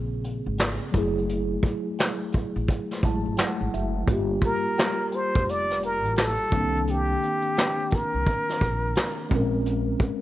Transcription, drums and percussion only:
0.24 closed hi-hat medium
0.58 snare loud
0.58 clap medium
0.58 closed hi-hat medium
0.94 kick medium
0.94 closed hi-hat medium
1.18 closed hi-hat soft
1.29 closed hi-hat medium
1.63 kick medium
1.63 closed hi-hat medium
1.98 snare loud
1.98 clap medium
1.98 closed hi-hat medium
2.32 kick medium
2.32 closed hi-hat medium
2.56 closed hi-hat soft
2.68 kick medium
2.68 closed hi-hat medium
2.91 snare soft
3.03 kick medium
3.03 closed hi-hat medium
3.37 snare loud
3.37 clap medium
3.37 closed hi-hat medium
3.74 closed hi-hat medium
4.08 kick loud
4.08 closed hi-hat medium
4.42 kick medium
4.42 closed hi-hat medium
4.78 snare loud
4.78 clap medium
4.78 closed hi-hat medium
5.11 closed hi-hat medium
5.35 kick loud
5.49 closed hi-hat medium
5.70 snare soft
5.83 closed hi-hat medium
6.05 closed hi-hat soft
6.16 snare loud
6.16 clap medium
6.16 closed hi-hat medium
6.52 kick loud
6.52 closed hi-hat medium
6.76 closed hi-hat soft
6.87 closed hi-hat medium
7.23 closed hi-hat medium
7.42 closed hi-hat soft
7.57 snare loud
7.57 clap medium
7.57 closed hi-hat medium
7.90 kick medium
7.90 closed hi-hat medium
8.27 kick medium
8.27 closed hi-hat medium
8.49 snare soft
8.61 kick medium
8.61 closed hi-hat medium
8.95 snare loud
8.95 clap medium
8.95 closed hi-hat medium
9.31 kick loud
9.31 closed hi-hat medium
9.66 closed hi-hat medium
10.00 kick loud
10.00 closed hi-hat medium

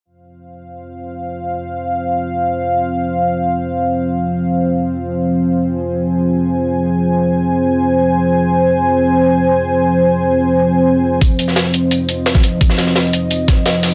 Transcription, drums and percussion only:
11.21 kick loud
11.21 closed hi-hat medium
11.39 closed hi-hat medium
11.48 snare soft
11.56 snare loud
11.56 closed hi-hat medium
11.65 snare soft
11.73 closed hi-hat medium
11.91 closed hi-hat medium
12.09 closed hi-hat medium
12.26 snare loud
12.26 closed hi-hat medium
12.35 kick loud
12.35 snare medium
12.43 closed hi-hat medium
12.61 kick loud
12.61 closed hi-hat medium
12.70 snare medium
12.78 snare medium
12.78 closed hi-hat medium
12.87 snare soft
12.96 snare loud
12.96 closed hi-hat medium
13.04 closed hi-hat soft
13.13 closed hi-hat medium
13.30 closed hi-hat medium
13.48 kick loud
13.48 snare soft
13.48 closed hi-hat medium
13.66 snare loud
13.66 closed hi-hat medium
13.83 snare soft
13.83 closed hi-hat medium
13.83 open hi-hat medium

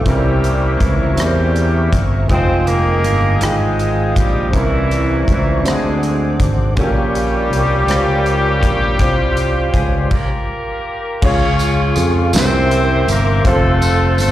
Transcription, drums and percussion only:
0.06 kick medium
0.06 closed hi-hat medium
0.44 closed hi-hat soft
0.80 kick medium
0.80 closed hi-hat soft
1.18 cross-stick medium
1.18 closed hi-hat medium
1.56 closed hi-hat soft
1.93 kick medium
1.93 closed hi-hat medium
2.29 kick medium
2.29 closed hi-hat medium
2.67 closed hi-hat soft
3.04 closed hi-hat soft
3.41 cross-stick medium
3.41 closed hi-hat medium
3.79 closed hi-hat soft
4.16 kick medium
4.16 closed hi-hat medium
4.53 kick medium
4.53 closed hi-hat medium
4.91 closed hi-hat soft
5.28 kick medium
5.28 closed hi-hat soft
5.66 cross-stick medium
5.66 closed hi-hat medium
6.03 closed hi-hat soft
6.40 kick medium
6.40 closed hi-hat medium
6.77 kick medium
6.77 closed hi-hat medium
7.15 closed hi-hat soft
7.53 closed hi-hat soft
7.88 cross-stick medium
7.88 closed hi-hat medium
8.26 closed hi-hat soft
8.63 kick medium
8.63 closed hi-hat medium
8.99 kick medium
8.99 closed hi-hat medium
9.37 closed hi-hat soft
9.74 kick medium
9.74 closed hi-hat soft
10.11 kick medium
10.11 crash medium
11.22 kick medium
11.22 crash medium
11.59 closed hi-hat medium
11.59 tambourine medium
11.96 closed hi-hat medium
11.96 tambourine medium
12.33 snare loud
12.33 closed hi-hat medium
12.33 tambourine medium
12.71 closed hi-hat soft
13.08 closed hi-hat medium
13.08 tambourine soft
13.45 kick medium
13.45 closed hi-hat medium
13.82 closed hi-hat soft
13.82 tambourine medium
14.18 closed hi-hat medium
14.18 tambourine medium

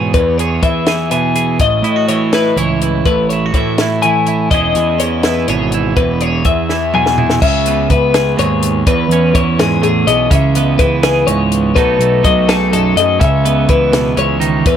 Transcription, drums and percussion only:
0.14 kick loud
0.14 closed hi-hat medium
0.39 closed hi-hat medium
0.63 kick medium
0.63 closed hi-hat medium
0.87 snare loud
0.87 closed hi-hat medium
1.11 closed hi-hat medium
1.36 closed hi-hat medium
1.60 kick loud
1.60 closed hi-hat medium
1.84 closed hi-hat medium
2.09 closed hi-hat medium
2.33 snare loud
2.33 closed hi-hat medium
2.57 closed hi-hat medium
2.82 closed hi-hat medium
3.06 kick medium
3.06 closed hi-hat medium
3.30 closed hi-hat medium
3.54 kick medium
3.54 closed hi-hat medium
3.78 snare medium
3.78 closed hi-hat medium
4.03 closed hi-hat medium
4.27 closed hi-hat soft
4.51 kick loud
4.51 closed hi-hat medium
4.75 closed hi-hat medium
5.00 closed hi-hat medium
5.23 snare loud
5.23 closed hi-hat medium
5.48 closed hi-hat medium
5.72 closed hi-hat medium
5.97 kick loud
5.97 closed hi-hat medium
6.21 closed hi-hat medium
6.45 kick medium
6.45 closed hi-hat medium
6.69 snare medium
6.94 mid tom medium
7.06 snare medium
7.18 floor tom medium
7.30 snare medium
7.42 kick loud
7.42 crash loud
7.66 closed hi-hat medium
7.90 kick medium
7.90 closed hi-hat medium
8.14 snare loud
8.14 closed hi-hat medium
8.39 closed hi-hat medium
8.63 closed hi-hat medium
8.87 kick loud
8.87 closed hi-hat loud
9.11 closed hi-hat medium
9.35 kick medium
9.35 closed hi-hat medium
9.59 snare loud
9.59 closed hi-hat medium
9.83 closed hi-hat medium
10.08 closed hi-hat medium
10.31 kick loud
10.31 closed hi-hat medium
10.55 closed hi-hat medium
10.79 kick medium
10.79 closed hi-hat medium
11.03 snare loud
11.03 closed hi-hat medium
11.28 closed hi-hat medium
11.52 closed hi-hat medium
11.76 kick loud
11.76 closed hi-hat medium
12.01 closed hi-hat medium
12.24 kick medium
12.24 closed hi-hat medium
12.49 snare loud
12.49 closed hi-hat medium
12.73 closed hi-hat medium
12.97 closed hi-hat medium
13.21 kick loud
13.21 closed hi-hat medium
13.46 closed hi-hat medium
13.69 kick medium
13.69 closed hi-hat medium
13.93 snare loud
13.93 closed hi-hat medium
14.17 closed hi-hat medium
14.41 closed hi-hat medium
14.66 kick loud
14.66 closed hi-hat medium

